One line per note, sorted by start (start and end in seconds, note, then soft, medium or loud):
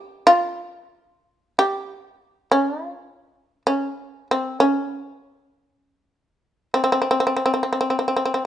0.00 0.25 G4 medium
0.27 1.56 F4 medium
1.59 2.49 G4 medium
2.52 2.88 C#4 medium
2.88 3.62 F4 medium
3.67 4.27 C#4 medium
4.31 4.58 C4 medium
4.60 5.82 C#4 medium
5.82 6.71 C4 medium
6.74 6.82 C4 medium
6.84 6.91 C4 medium
6.92 7.00 C4 medium
7.02 7.09 C4 soft
7.11 7.18 C4 medium
7.20 7.26 C4 soft
7.27 7.35 C4 medium
7.36 7.44 C4 soft
7.46 7.52 C4 soft
7.54 7.62 C4 soft
7.63 7.71 C4 soft
7.73 7.79 C4 soft
7.81 7.89 C4 soft
7.90 7.98 C4 soft
7.99 8.07 C4 soft
8.08 8.15 C4 soft
8.16 8.24 C4 soft
8.25 8.33 C4 soft
8.34 8.44 C4 soft